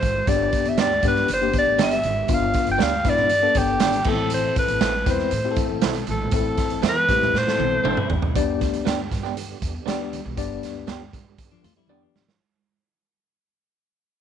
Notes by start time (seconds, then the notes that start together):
Already playing: E3 A3 C4 A4 C5
0.02 G#1, kick, closed hi-hat, high conga
0.27 G1 G2 D3 G3 B3 D4 G4 D5, kick, closed hi-hat, muted conga
0.53 kick, closed hi-hat
0.65 G1 E5, closed hi-hat
0.78 D2 B3 D4 G4 D5, snare, closed hi-hat, high conga
1.03 G2 B3 D4 G4, kick, closed hi-hat, low conga
1.07 B4
1.16 snare
1.28 G1, closed hi-hat, muted conga
1.33 C5
1.41 A#3 D4 G4
1.47 B3
1.53 kick, closed hi-hat, muted conga
1.58 D5
1.65 A1
1.78 G1 B3 D4 G4, snare, closed hi-hat, high conga
1.83 E5
1.91 closed hi-hat
2.03 G#1, closed hi-hat, high conga
2.28 G1 G2 B3 D4 F4, kick, closed hi-hat, muted conga
2.34 F5
2.54 kick, snare, closed hi-hat
2.67 G1, closed hi-hat
2.72 G5
2.78 D2 B3 D4 G4, snare, closed hi-hat, high conga
2.83 F5
3.04 G2 B3 D4 E4, kick, snare, closed hi-hat, low conga
3.09 D5
3.17 snare, low conga
3.29 closed hi-hat, muted conga
3.43 B3 D4 A4
3.55 G1 G4, kick, closed hi-hat, muted conga
3.80 A1 B3 D4 G4, snare, closed hi-hat, high conga
3.93 closed hi-hat
4.04 A1 A2 E3 A3 B3 C4 E4 A4, kick, crash, high conga
4.09 C4 A4
4.30 closed hi-hat, muted conga
4.34 C5
4.56 B4, kick, closed hi-hat, muted conga
4.68 A1, closed hi-hat
4.81 A1 C4 E4 A4, snare, closed hi-hat, high conga
5.06 E2 C4 E4 B4, kick, snare, closed hi-hat, low conga
5.10 C5
5.19 snare
5.31 A2, closed hi-hat, muted conga
5.45 C4 E4 G4
5.51 A4
5.56 kick, closed hi-hat, muted conga
5.69 A1
5.81 B1 C4 E4 A4, snare, closed hi-hat, high conga
5.95 closed hi-hat
6.07 A#1 A2 A4, closed hi-hat, high conga
6.31 A1 C4 E4 A4, kick, closed hi-hat, muted conga
6.36 A4
6.57 kick, snare, closed hi-hat
6.70 A1, closed hi-hat
6.82 E2 C4 E4 A4, snare, closed hi-hat, high conga
6.89 B4
7.08 A2 C4 E4 G4, kick, snare, closed hi-hat, low conga
7.22 snare, low conga
7.33 A2, snare, muted conga, low conga
7.38 C5
7.47 C4 E4 A4, snare
7.58 B1 E3 C4, high tom, muted conga
7.83 A1 C4 D4 E4 A4, mid tom, high conga
7.97 G3 E4, mid tom
8.09 A1, floor tom, high conga
8.22 B1, floor tom
8.34 G1 G2 D3 G3 B3 D4 G4 D5, kick, closed hi-hat, muted conga
8.61 D2, kick, snare, closed hi-hat
8.74 closed hi-hat
8.85 D2 B3 D4 G4, snare, closed hi-hat, high conga
9.12 G2, kick, snare, closed hi-hat, low conga
9.23 B3 D4 G4, snare
9.37 closed hi-hat, muted conga
9.62 E2, kick, closed hi-hat, muted conga
9.86 D2 B3 D4 G4 D5, snare, closed hi-hat, high conga
10.13 closed hi-hat, high conga
10.26 B1
10.37 G1 G2 B3 D4 G4 D5, kick, closed hi-hat, muted conga
10.63 D2, snare, closed hi-hat
10.87 D2 B3 D4 G4, snare, closed hi-hat, high conga
11.13 G2, kick, closed hi-hat, low conga
11.38 kick, closed hi-hat, muted conga
11.51 F3 D4
11.64 F2 A3 F4, closed hi-hat, muted conga
11.77 G3 E4
11.88 B3 D4 G4 D5, high conga
12.03 F3 D4
12.14 G#1, snare, high conga
12.28 snare